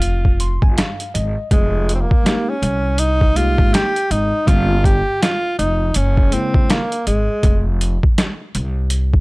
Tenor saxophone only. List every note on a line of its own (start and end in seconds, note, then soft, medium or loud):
0.00 0.78 F4 loud
1.52 1.92 G#3 medium
1.95 2.02 C4 medium
2.01 2.51 A#3 medium
2.49 3.01 C#4 medium
2.99 3.38 D#4 loud
3.37 3.75 F4 loud
3.73 4.13 G4 loud
4.11 4.49 D#4 medium
4.48 4.86 F4 loud
4.85 5.23 G4 loud
5.22 5.58 F4 loud
5.58 5.97 D#4 medium
5.96 6.35 C#4 medium
6.33 6.72 C4 medium
6.71 7.06 A#3 medium
7.07 7.77 G#3 medium